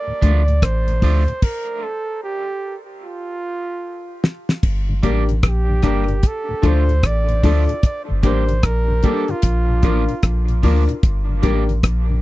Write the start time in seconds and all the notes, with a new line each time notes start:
Already playing: D5
0.07 D2 A2
0.21 D2 F3 A3 D4 F4, kick, closed hi-hat
0.48 D2 A2, closed hi-hat
0.62 A1 C5, kick, cross-stick, closed hi-hat
0.87 D2 A2, closed hi-hat
1.01 D2 F3 A3 D4 F4, kick, open hi-hat
1.27 D2 A2, muted clean electric guitar stroke, closed hi-hat
1.42 A#4, kick, crash
1.83 A4
2.24 G4
3.04 F4
4.24 snare
4.49 snare
4.63 G1, kick, crash
4.89 G2 D3
5.03 A1 G3 A#3 D4 G4 A#4, kick, closed hi-hat
5.29 G2 D3, closed hi-hat
5.43 A#1, kick, cross-stick, closed hi-hat
5.48 G4
5.69 G2 D3
5.82 G1 G3 A#3 D4 G4 A#4, kick, cross-stick, closed hi-hat
6.08 G2 D3 G4 A#4, closed hi-hat
6.23 kick, closed hi-hat
6.27 A4
6.49 D2 A2
6.62 D2 F3 A3 D4 F4 A4, kick, closed hi-hat
6.67 C5
6.88 D2 A2, closed hi-hat
7.03 A1 D5, kick, cross-stick, closed hi-hat
7.28 D2 A2, closed hi-hat
7.43 D2 F3 A3 D4 F4 A4, kick, open hi-hat
7.68 D2 A2 F4 A4, muted clean electric guitar stroke, closed hi-hat
7.83 D5, kick, closed hi-hat
8.08 G1 G2 D3
8.23 A1 G3 A#3 D4 G4 A#4 C5, kick, closed hi-hat
8.48 G2 D3, closed hi-hat
8.63 A#1 A#4, kick, cross-stick, closed hi-hat
8.88 G2 D3
9.03 G3 A#3 D4 G4 A4 A#4, kick, closed hi-hat
9.28 G2 D3 F4 G4 A#4, closed hi-hat
9.42 A#1, kick, closed hi-hat
9.69 A#2
9.83 A1 F3 A#3 D4 F4 A#4, kick, closed hi-hat
10.09 A#2, closed hi-hat
10.23 A#1, kick, cross-stick, closed hi-hat
10.48 A#2, closed hi-hat
10.63 D2 F3 A#3 D4 F4 A#4, kick, open hi-hat
10.88 A#2 F4 A#4, muted clean electric guitar stroke, closed hi-hat
11.03 G1, kick, closed hi-hat
11.29 G2 D3
11.42 A1 G3 A#3 D4 G4 A#4, kick, closed hi-hat
11.69 G2 D3, closed hi-hat
11.83 A#1, kick, cross-stick, closed hi-hat
12.09 G2 D3